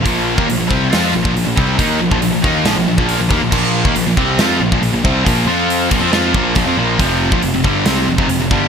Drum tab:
CC |----------------|----------------|x---------------|------x---------|
HH |o---o---o---o---|o---o---o---o---|----o---o---o---|o---o-------o---|
SD |--------o-------|--------o-------|--------o-------|--------o-------|
BD |o--o--o----o--o-|o--o--o----o--o-|o--o--o----o--o-|o-----o---o-o---|

CC |----------------|
HH |o---o---o---o---|
SD |--------o-------|
BD |o--o--o----o--o-|